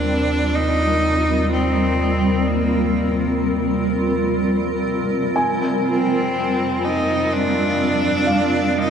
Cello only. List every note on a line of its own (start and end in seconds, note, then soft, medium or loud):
0.00 0.57 D4 medium
0.55 1.51 D#4 loud
1.53 2.49 C4 medium
2.48 3.44 A#3 medium
5.87 6.86 C4 medium
6.85 7.35 D#4 medium
7.33 8.79 D4 loud
8.77 8.90 D#4 loud